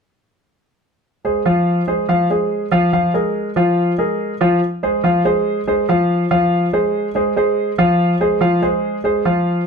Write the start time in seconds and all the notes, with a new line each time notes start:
1.25 G#3 G#4 C5
1.46 F3 F4 F5
1.87 G#3 G#4 C5
2.09 F3 F4 F5
2.30 G#3 G#4 C5
2.71 F3 F4 F5
2.93 F3 F4 F5
3.14 G#3 G#4 A#4
3.56 F3 F4 F5
3.98 G#3 G#4 A#4
4.41 F3 F4 F5
4.83 G#3 G#4 C5
5.04 F3 F4 F5
5.25 G#3 G#4 C5
5.67 G#3 G#4 C5
5.89 F3 F4 F5
6.31 F3 F4 F5
6.73 G#3 G#4 C5
7.15 G#3 G#4 C5
7.36 G#3 G#4 C5
7.78 F3 F4 F5
8.20 G#3 G#4 C5
8.41 F3 F4 F5
8.62 G#3 G#4 C5
9.04 G#3 G#4 C5
9.25 F3 F4 F5